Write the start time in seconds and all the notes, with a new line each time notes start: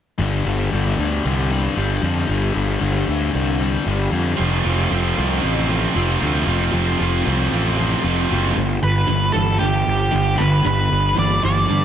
0.18 G1 G2 D3 G3
0.45 G1 G2 D3 G3
0.72 G1 G2 D3 G3
0.98 D2 G2 D3 G3
1.24 C2 G2 D3 G3
1.50 G2 D3 G3
1.77 G1 G2 D3 G3
2.02 F2 G2 D3 G3
2.27 G1 G2 D3 G3
2.54 G1 G2 D3 G3
2.79 G1 G2 D3 G3
3.06 D2 G2 D3 G3
3.33 C2 G2 D3 G3
3.60 G2 D3 G3
3.85 G1 G2 D3 G3
4.12 F2 G2 D3 G3
4.36 F1 F2 C3 F3 A3 C4 F4
4.64 F1 F2 C3 F3 A3 C4 F4
4.90 F1 F2 C3 F3 A3 C4 F4
5.16 C2 F2 C3 F3 A3 C4 F4
5.42 A1 F2 C3 F3 A3 C4 F4
5.69 F2 C3 F3 A3 C4 F4
5.93 F1 F2 C3 F3 A3 C4 F4
6.20 D2 F2 C3 F3 A3 C4 F4
6.45 F1 F2 C3 F3 A3 C4 F4
6.49 F3
6.72 F1 F2 C3 F3 A3 C4 F4
6.98 F1 F2 C3 F3 A3 C4 F4
7.25 C2 F2 C3 F3 A3 C4 F4
7.51 A1 F2 C3 F3 A3 C4 F4
7.76 F2 C3 F3 A3 C4 F4
8.03 F1 F2 C3 F3 A3 C4 F4
8.30 F#1 F2 C3 F3 A3 C4 F4
8.56 G1 G2 D3
8.83 G1 B4
9.07 G1 G2 E3
9.32 G1 G2 E3 A4
9.59 G1 G2 D3 G4
9.86 G1
10.11 G1 G2 D3
10.36 G1 G2 D3 B4
10.63 G1 G2 D3 B4
10.91 G1
11.14 G1 G2 E3
11.19 D5
11.41 G1 G2 E3 D5
11.65 G2 D3
11.70 G2